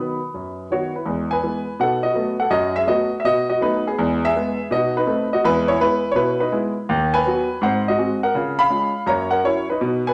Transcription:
Already playing: B4 B5
0.00 D#3 F#3 B3
0.34 F#2
0.70 D#3 F#3 B3 F#4 C#5
0.96 E4 B4
1.06 E2 G#3
1.31 B4 G#5
1.43 E3 G#3 B3
1.79 B2 D#4 A4 F#5
2.03 F#4 D#5
2.14 F#3 A3 B3
2.40 A4 F#5
2.50 F#2 F#4 D#5
2.76 G#4 E5
2.87 F#3 A3 B3 F#4 D#5
3.20 E5
3.24 B2 F#4 D#5
3.50 F#4 D#5
3.61 F#3 A3 B3 D#4 B4
3.87 B3 G#4
3.99 E2 G#3
4.25 G#4 E5
4.36 G#3 B3
4.71 B2 D#4 F#4 D#5
4.97 D#4 B4
5.07 A3 C4 D#4
5.33 F#4 D#5
5.45 E2 G#3 E4 B4
5.68 E4 C#5
5.80 G#3 B3 E4 B4
6.12 B2 C#5
6.16 E4 B4
6.40 D#4 B4
6.52 G#3 B3 E4
6.89 D#2
7.14 B4 G#5
7.26 F#3 B3 F#4
7.62 G#2 C4 C5 F#5
7.88 F#4 D#5
7.98 G#3 C4 F#4
8.23 A#4 F#5
8.35 C#3 F4
8.59 F5 B5
8.70 G#3 C#4 F4
9.06 F#2 A#3 C#5 A#5
9.31 A#4 F#5
9.44 F#3 C#4 E4 C#5
9.70 D#4 B4
9.81 B2 D#4
10.07 B4 G#5

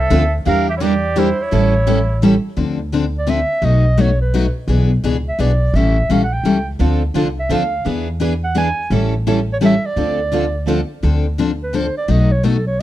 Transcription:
Already playing: E5
0.00 A4
0.10 D2 D3 F3 A3 C4 D4 F4 A4
0.45 E2 E3 G3 A#3 D4 E4 G4 A#4 F5
0.69 G4 E5
0.77 A#3 E4 C#5
0.81 E3 G3 D4 E4 G4 A#4 D5
1.16 E3 G3 A#3 D4 E4 G4 A#4 C5
1.39 E4 C#5
1.51 A1 E3 G3 C#4 E4 A4
1.87 E3 G3 C#4 E4 A4
2.22 E3 G3 C#4 E4 A4
2.57 D2 D3 F3 C4 D4 A4
2.92 D3 F3 C4 D4 A4
3.19 D5
3.27 D3 F3 C4 D4 A4 E5
3.62 B1 B2 F#3 A3 D#4 F#4 D#5
3.97 B2 F#3 A3 D#4 F#4 C#5
4.21 B4
4.34 B2 F#3 A3 D#4 F#4
4.68 B1 B2 E3 B3 D4 G#4
5.03 C#2 B2 E3 B3 D4 G#4
5.28 E5
5.39 B1 B2 E3 B3 D4 G#4 D5
5.74 A1 E3 G3 C#4 E4 A4 E5
6.09 A#1 E3 G3 C#4 E4 A4 F5
6.24 F#5
6.32 G5
6.43 C#2 E3 G3 C#4 E4 A4
6.79 D2 D3 F3 A3 C4 D4 F4 A4
7.14 C2 D3 F3 A3 C4 D4 F4 A4
7.39 E5
7.49 D2 D3 F3 A3 C4 D4 F4 A4 F5
7.85 E2 E3 B3 D4 G#4 B4
8.20 E3 B3 D4 G#4 B4
8.44 F#5
8.55 E3 B3 D4 G#4 B4 G#5
8.90 A1 E3 G3 C#4 E4 A4
9.27 E3 G3 C#4 E4 A4
9.53 C#5
9.61 E3 G3 C#4 E4 A4
9.65 E5
9.86 D5
9.96 D2 D3 F3 A3 C4 D4 F4 A4
10.32 D3 F3 A3 C4 D4 F4 A4
10.67 D3 F3 A3 C4 D4 F4 A4
11.03 D2 D3 F3 C4 D4 A4
11.38 D3 F3 C4 D4 A4
11.63 B4
11.73 D3 F3 C4 D4 A4 C5
11.98 D5
12.08 B1 B2 F#3 A3 D#4 F#4 D#5
12.32 C#5
12.43 B2 F#3 A3 D#4 F#4 A4
12.67 C#5

